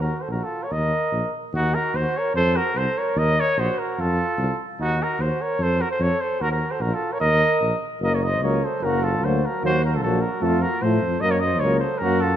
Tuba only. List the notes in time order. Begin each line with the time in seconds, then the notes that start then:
Already playing: D#2
0.28 A#1
0.71 D#2
1.12 A#1
1.53 D#2
1.94 D#2
2.34 F2
2.75 C2
3.16 D#2
3.57 A#1
3.98 F2
4.38 C2
4.79 D#2
5.19 D#2
5.59 F2
6.00 F2
6.40 D#2
6.80 A#1
7.21 D#2
7.61 A#1
8.01 F#1
8.40 C#2
8.81 F#1
9.21 D2
9.63 D#2
10.02 A#1
10.42 F2
10.82 A2
11.01 F2
11.21 F#2
11.61 C#2
12.01 F#2